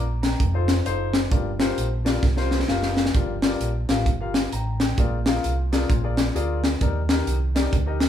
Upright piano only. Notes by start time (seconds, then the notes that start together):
Already playing: A#5 D6
0.22 G5 A#5
0.54 D#4 F4 A4 C5
0.85 D#4 F4 A4 C5
1.31 G2 F4 G4 A#4 D5
1.59 F4 G4 A#4 C5
2.05 F4 G4 A#4 D5
2.36 F4 G4 A#4 C5
2.68 F4 G4 A#4 F5
3.14 G2 F4 G4 A#4 D5
3.43 F4 G4 A#4 D5
3.88 F4 G4 A#4 F5
4.20 F4 G4 A#4 F5
4.53 G5 A#5
4.81 G5
4.98 A#2 F4 G#4 A#4 D5
5.26 F4 G#4 A#4 F5
5.72 F4 G#4 A#4 D5
5.90 A#2
6.03 F4 G#4 A#4 D5
6.35 F4 G#4 A#4 D5
6.81 D#3 D#4 G4 A#4 D5
7.09 D#4 G4 A#4 D#5
7.55 D#4 G4 A#4 D5
7.86 D#4 G4 A#4 D#5